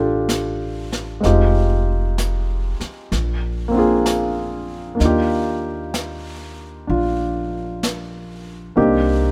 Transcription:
0.00 1.19 A1 medium
0.00 1.23 A3 soft
0.00 1.21 C4 soft
0.00 1.22 D4 soft
0.00 1.23 F4 soft
0.00 1.23 G4 soft
0.00 1.24 A4 soft
0.29 brush sweep soft
0.29 snare soft
0.29 hi-hat pedal soft
0.92 snare soft
1.20 2.75 F1 medium
1.20 3.10 G#3 soft
1.20 3.11 C4 soft
1.20 3.11 D#4 soft
1.20 brush sweep soft
1.20 snare soft
1.25 3.12 F4 soft
1.25 3.12 G4 soft
2.18 brush sweep soft
2.18 snare soft
2.18 hi-hat pedal medium
2.80 muted upright bass stroke soft
2.80 snare soft
3.12 4.96 A#1 medium
3.12 brush sweep soft
3.12 snare soft
3.68 4.93 A#3 medium
3.68 4.99 C4 soft
3.74 4.96 D4 soft
3.74 5.02 F4 soft
3.79 5.03 G#4 medium
4.06 brush sweep soft
4.06 snare soft
4.06 hi-hat pedal medium
4.95 8.74 A#3 soft
4.95 6.86 D4 soft
5.00 6.85 D#2 medium
5.00 8.76 D#4 soft
5.00 6.89 F4 soft
5.00 brush sweep soft
5.00 snare soft
5.05 8.76 G4 soft
5.94 brush sweep soft
5.94 snare soft
5.94 hi-hat pedal medium
6.87 8.73 A#1 medium
6.87 8.75 D4 soft
6.87 8.78 F4 soft
6.87 brush sweep soft
7.83 brush sweep soft
7.83 snare soft
7.83 hi-hat pedal soft
8.76 9.32 C2 medium
8.76 9.32 A#3 soft
8.76 9.32 C4 soft
8.76 9.32 D4 soft
8.76 9.32 D#4 soft
8.76 9.32 G4 medium
8.76 brush sweep soft

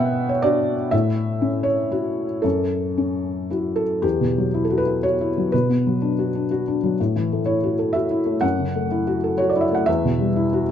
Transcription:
0.00 0.88 B2 medium
0.00 0.73 B3 medium
0.00 0.31 E5 medium
0.00 0.95 F#5 loud
0.00 0.95 G5 medium
0.29 0.43 C#5 medium
0.42 0.88 D4 medium
0.42 0.88 F#4 medium
0.42 0.92 D5 medium
0.91 2.39 A2 medium
0.91 1.65 E5 medium
1.41 2.23 C#4 soft
1.63 2.42 C#5 medium
1.91 2.40 E4 soft
1.91 2.40 F#4 medium
2.42 3.99 F#2 medium
2.42 3.49 A4 medium
2.98 3.83 C#4 soft
3.50 3.99 E4 soft
3.50 4.00 F#4 soft
3.76 4.03 A4 medium
4.02 5.48 E2 medium
4.02 4.65 G4 medium
4.21 4.47 B2 soft
4.38 4.64 F#3 soft
4.54 4.80 E4 soft
4.65 4.78 A4 medium
4.70 4.96 F#4 soft
4.78 5.03 B4 medium
4.87 5.13 E4 soft
5.03 5.30 F#4 soft
5.03 5.52 C#5 medium
5.21 5.46 E4 soft
5.38 5.53 F#3 soft
5.52 6.95 B2 medium
5.52 6.49 B4 medium
5.69 5.95 B3 soft
5.87 6.12 F#3 soft
6.02 6.27 D4 soft
6.19 6.44 F#4 soft
6.35 6.60 D4 soft
6.51 6.76 F#4 soft
6.68 6.93 D4 soft
6.83 6.99 F#3 soft
7.00 8.39 A2 medium
7.16 7.41 E3 soft
7.32 7.57 A3 soft
7.46 7.72 E4 soft
7.46 7.94 C#5 medium
7.63 7.88 F#4 soft
7.79 8.04 A4 soft
7.93 8.20 F#4 soft
7.93 8.42 E5 medium
8.11 8.36 E4 soft
8.26 8.42 A3 soft
8.41 9.83 F#2 medium
8.41 9.38 F#5 medium
8.59 8.85 C#3 soft
8.75 9.01 A3 soft
8.91 9.17 E4 soft
9.07 9.33 F#4 soft
9.24 9.49 A4 soft
9.38 9.65 F#4 soft
9.38 9.50 C#5 medium
9.50 9.62 D5 medium
9.56 9.81 E4 medium
9.61 9.74 E5 medium
9.72 9.87 A3 soft
9.72 9.87 F#5 medium
9.86 10.71 E2 medium
9.86 10.71 E5 medium
10.05 10.29 B2 soft
10.19 10.44 G3 soft
10.36 10.61 E4 soft
10.53 10.71 F#4 medium

